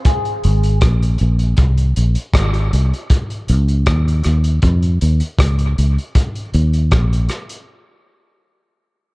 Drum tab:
HH |xxxxxxxxxxxxxxxx|xxxxxxxxxxxxxxxx|xxxxxxxx--------|
SD |----r-------r---|----r-r-----r---|----r-r---------|
BD |o---o---o---o---|o---o---o---o---|o---o-----------|